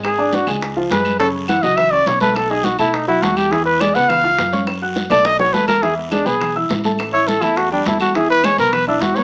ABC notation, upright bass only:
X:1
M:4/4
L:1/8
Q:1/4=207
K:Emix
V:1 name="Upright bass" clef=bass
G,,,3 C,,3 F,,2- | F,,3 C,,3 B,,,2- | B,,,3 B,,3 E,,2- | E,,3 C,,3 F,,2- |
F,,3 B,,,3 E,,2- | E,,3 B,,,3 A,,,2- | A,,,3 E,,3 E,,2- | E,,3 B,,,3 E,,2 |]